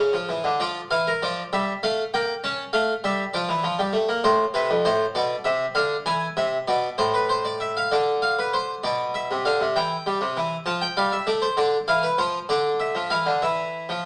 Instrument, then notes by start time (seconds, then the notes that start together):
harpsichord
Already playing: C#5
0.00 C#3
0.13 F3
0.29 E3
0.44 D3
0.60 F3 D5
0.91 E3 F5
1.07 A#4
1.22 F3 D5
1.53 G3 E5
1.83 A3 F5
2.14 A#3 G5
2.44 C#4 A5
2.73 A3 F5
3.04 G3 E5
3.34 F3 D5
3.49 E3
3.64 F3
3.79 G3
3.93 A3
4.09 A#3
4.24 A2 C5
4.54 C3 B4
4.70 F2
4.85 A2 C5
5.15 B2 D5
5.44 C3 E5
5.75 D3 F5
6.06 E3 G#5
6.37 C3 E5
6.68 B2 D5
6.98 A2 C5
7.14 B4
7.29 C5
7.45 D5
7.60 E5
7.77 F5
7.92 D3 D5
8.22 F5
8.39 B4
8.53 C5
8.84 B2 D5
9.14 E5
9.31 C3
9.45 D3 F5
9.61 C3
9.76 E3 G5
10.06 G3
10.21 C3
10.37 E3
10.66 F3 A5
10.81 G5
10.97 G3 F5
11.12 E5
11.27 A3 D5
11.42 C5
11.57 D3 D5
11.88 E3 F5
12.03 B4
12.18 F3 C5
12.49 D3 D5
12.80 E5
12.95 F3
13.10 E3 F5
13.26 D3
13.42 E3 E5
13.89 F3